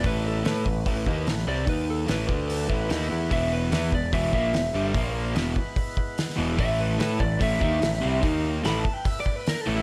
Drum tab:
HH |o---o---o---o---|o---o---o---o---|o---o---o---o---|o---o---o---o---|
SD |----o-------oo--|----o-------oo--|----o-------o---|----o-------oo--|
BD |o-----o-o-o-----|o-----o---o-----|o-----o-o-o-----|o-----o-o-o-----|

HH |o---o---o---o---|o---o---o---o---|
SD |----o-------oo--|----o-------o---|
BD |o-----o-o-o-----|o-----o-o-o-----|